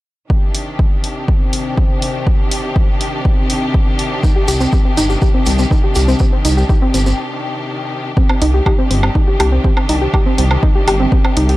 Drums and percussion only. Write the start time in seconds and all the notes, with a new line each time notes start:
0.30 kick
0.55 open hi-hat
0.79 kick
1.04 open hi-hat
1.28 kick
1.53 open hi-hat
1.78 kick
2.02 open hi-hat
2.27 kick
2.51 open hi-hat
2.76 kick
3.01 open hi-hat
3.25 kick
3.50 open hi-hat
3.74 kick
3.99 open hi-hat
4.24 kick, maracas
4.48 open hi-hat, maracas
4.60 maracas
4.72 kick, maracas
4.97 open hi-hat, maracas
5.10 maracas
5.22 kick, maracas
5.46 open hi-hat, maracas
5.59 maracas
5.71 kick, maracas
5.95 open hi-hat, maracas
6.08 maracas
6.19 kick, maracas
6.45 open hi-hat, maracas
6.58 maracas
6.69 kick, maracas
6.94 open hi-hat, maracas
7.06 maracas
8.17 kick
8.29 low woodblock
8.42 open hi-hat
8.66 kick, low woodblock
8.91 open hi-hat
9.03 low woodblock
9.15 kick
9.40 open hi-hat, low woodblock
9.64 kick
9.77 low woodblock
9.89 open hi-hat
10.14 kick, low woodblock
10.38 open hi-hat
10.51 low woodblock
10.63 kick
10.88 open hi-hat, low woodblock
11.12 kick
11.25 low woodblock
11.37 open hi-hat
11.49 open hi-hat